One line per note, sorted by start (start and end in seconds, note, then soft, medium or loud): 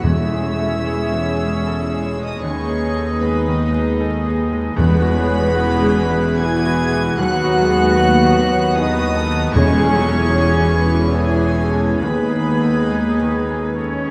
0.02 2.39 E1 medium
0.02 1.20 E2 loud
0.02 2.39 E2 medium
0.02 2.45 E3 medium
0.02 4.76 G#3 medium
0.02 2.44 C#4 medium
0.02 2.19 E4 loud
0.02 4.46 G#4 medium
0.02 4.77 G#4 medium
0.02 2.39 C#5 medium
0.02 2.16 C#5 medium
0.02 1.91 E5 loud
0.02 2.18 E6 loud
0.30 2.45 E4 soft
0.30 0.74 G#4 medium
0.56 1.09 G#4 medium
0.56 0.85 A4 soft
0.83 3.19 G#3 medium
0.83 1.28 G#4 medium
1.10 1.54 E3 medium
1.10 1.63 G#4 medium
1.38 1.83 F#4 soft
1.38 1.81 G#4 soft
1.64 2.15 G#4 medium
1.64 1.92 A4 medium
1.91 2.33 G#4 medium
1.91 2.46 C#5 medium
2.16 2.44 G#3 medium
2.16 2.94 G#4 medium
2.22 2.43 D#4 medium
2.22 2.42 D#5 medium
2.22 2.43 D#6 medium
2.43 4.73 D#2 medium
2.43 4.74 D#2 medium
2.43 4.80 D#3 medium
2.43 3.21 C#4 loud
2.43 4.78 D#4 loud
2.43 4.77 B4 medium
2.43 3.21 C#5 medium
2.43 4.73 D#5 medium
2.43 3.19 C#6 loud
2.69 4.80 D#4 medium
2.69 3.11 G#4 medium
2.95 3.45 G#4 medium
2.95 3.22 A4 soft
3.19 5.55 G#3 medium
3.19 4.00 B3 medium
3.19 3.64 G#4 medium
3.19 3.99 B4 medium
3.19 3.99 B5 medium
3.46 3.90 D#3 medium
3.46 3.98 G#4 medium
3.72 4.17 F#4 medium
3.72 4.16 G#4 medium
3.99 4.50 G#4 medium
3.99 4.26 A4 medium
4.26 4.67 G#4 medium
4.26 6.66 B4 medium
4.52 4.77 G#3 medium
4.52 7.23 G#4 medium
4.76 7.15 E1 medium
4.76 7.15 E2 medium
4.76 5.94 E2 loud
4.76 7.23 E3 medium
4.76 6.35 G#3 loud
4.76 6.35 B3 loud
4.76 5.52 B3 medium
4.76 7.14 G#4 medium
4.76 5.53 G#4 medium
4.76 6.35 B4 loud
4.76 5.14 B4 medium
4.76 9.51 F#5 medium
4.76 6.35 B5 loud
5.02 6.11 E4 medium
5.02 5.45 F#4 medium
5.17 5.56 C#5 medium
5.29 5.82 F#4 medium
5.29 5.56 G#4 medium
5.55 7.22 G#3 medium
5.55 6.40 C#4 medium
5.55 6.00 F#4 medium
5.55 5.97 F#4 medium
5.55 7.16 B4 loud
5.84 6.28 B2 medium
5.84 6.38 F#4 medium
5.97 7.17 E4 loud
6.10 6.59 E4 medium
6.10 6.55 F#4 medium
6.38 6.81 E3 medium
6.38 7.19 B3 medium
6.38 6.92 F#4 medium
6.38 6.66 G#4 medium
6.38 7.20 G#4 loud
6.38 7.19 G#5 loud
6.38 7.19 G#6 loud
6.66 7.08 F#4 medium
6.66 9.02 B4 medium
6.82 7.20 E3 loud
6.92 7.19 G#3 medium
6.92 7.70 F#4 medium
7.17 9.50 D#2 medium
7.17 9.51 D#2 loud
7.17 9.58 F#3 medium
7.17 7.59 F#3 loud
7.17 8.37 B3 loud
7.17 8.73 F#4 loud
7.17 7.96 F#4 medium
7.17 7.96 B4 loud
7.17 9.51 B4 loud
7.17 8.73 F#5 loud
7.17 8.74 F#6 loud
7.44 9.58 D#4 medium
7.44 7.87 F#4 medium
7.59 7.98 G#3 loud
7.70 8.23 F#4 medium
7.70 7.97 G#4 medium
7.96 8.37 A3 loud
7.96 9.58 B3 medium
7.96 8.39 F#4 medium
7.96 8.77 C#5 medium
8.00 8.76 F#4 medium
8.23 8.66 D#3 medium
8.23 8.76 F#4 medium
8.38 9.55 B3 loud
8.49 8.95 E4 medium
8.49 8.92 F#4 medium
8.75 9.55 D#4 loud
8.75 9.28 F#4 medium
8.75 9.54 F#4 medium
8.75 9.02 G#4 medium
8.75 9.17 B4 loud
8.75 9.55 D#5 loud
8.75 9.55 D#6 loud
9.01 9.44 F#4 medium
9.01 9.58 B4 medium
9.15 9.54 A4 loud
9.26 9.54 B3 medium
9.26 9.59 F#4 medium
9.52 11.98 E1 loud
9.52 11.97 E2 medium
9.52 10.72 E2 loud
9.52 11.99 E2 medium
9.52 12.06 E3 medium
9.52 9.94 G#3 loud
9.52 11.14 C#4 loud
9.52 10.33 C#4 loud
9.52 11.13 G#4 loud
9.52 10.92 C#5 loud
9.52 11.13 C#6 loud
9.56 10.34 E4 loud
9.56 10.34 G#4 loud
9.56 10.99 G#5 loud
9.79 12.06 E4 medium
9.79 10.23 G#4 medium
9.94 10.34 F#3 loud
10.07 10.34 A4 medium
10.07 13.98 G#5 medium
10.32 12.03 E3 loud
10.32 11.16 C#4 medium
10.32 10.77 G#4 medium
10.32 11.16 G#4 medium
10.32 10.76 C#5 medium
10.60 11.05 E3 medium
10.77 11.18 B4 loud
10.88 11.36 F#4 medium
10.88 11.33 G#4 medium
11.15 12.03 E3 loud
11.15 12.01 C#4 medium
11.15 12.02 G#4 loud
11.15 12.01 G#4 medium
11.15 11.59 G#4 medium
11.15 11.44 A4 medium
11.15 12.03 C#5 medium
11.15 12.01 G#5 loud
11.15 12.00 G#5 medium
11.44 11.90 G#4 medium
11.44 12.06 C#5 medium
11.59 12.03 A4 medium
11.73 12.02 G#3 medium
11.73 12.60 G#4 medium
12.00 14.11 D#2 medium
12.00 13.76 D#2 medium
12.00 14.11 D#2 medium
12.00 14.11 D#3 medium
12.00 14.11 G#3 medium
12.00 14.11 D#4 medium
12.00 14.11 G#4 medium
12.00 13.76 B4 medium
12.00 13.72 G#5 medium
12.00 13.71 B5 loud
12.04 13.77 B3 medium
12.04 14.11 G#4 medium
12.04 14.11 B4 medium
12.31 14.11 D#4 medium
12.31 12.78 G#4 medium
12.61 13.18 G#4 medium
12.61 12.90 A4 soft
12.91 14.11 G#3 medium
12.91 13.37 G#4 medium
13.19 13.66 D#3 medium
13.19 13.75 G#4 medium
13.48 13.96 F#4 medium
13.48 13.94 G#4 soft
13.75 14.11 C#4 medium
13.75 14.11 G#4 medium
13.75 14.05 A4 medium
13.75 14.11 C#5 medium
14.05 14.11 G#4 medium
14.05 14.11 D#5 medium